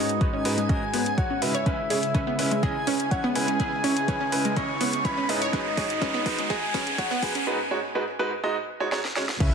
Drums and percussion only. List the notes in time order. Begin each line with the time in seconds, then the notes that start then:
0.09 closed hi-hat
0.21 kick, closed hi-hat
0.45 open hi-hat
0.58 closed hi-hat
0.69 kick, closed hi-hat
0.94 open hi-hat
1.06 closed hi-hat
1.18 kick, closed hi-hat
1.42 open hi-hat
1.55 closed hi-hat
1.66 kick, closed hi-hat
1.90 open hi-hat
2.03 closed hi-hat
2.15 kick, closed hi-hat
2.39 open hi-hat
2.51 closed hi-hat
2.63 kick, closed hi-hat
2.87 open hi-hat
3.00 closed hi-hat
3.11 kick, closed hi-hat
3.35 open hi-hat
3.48 closed hi-hat
3.60 kick, closed hi-hat
3.84 open hi-hat
3.97 closed hi-hat
4.08 kick, closed hi-hat
4.32 open hi-hat
4.45 closed hi-hat
4.57 kick, closed hi-hat
4.81 open hi-hat
4.93 closed hi-hat
5.05 kick, closed hi-hat
5.29 open hi-hat
5.42 closed hi-hat
5.53 kick, closed hi-hat
5.77 kick, open hi-hat
5.90 closed hi-hat
6.02 kick, closed hi-hat
6.26 kick, open hi-hat
6.39 closed hi-hat
6.50 kick, closed hi-hat
6.74 kick, open hi-hat
6.87 closed hi-hat
6.98 kick, closed hi-hat
7.23 kick, open hi-hat
7.35 closed hi-hat
8.92 snare
9.05 snare
9.16 snare
9.29 snare
9.40 kick, closed hi-hat, crash, ride, cabasa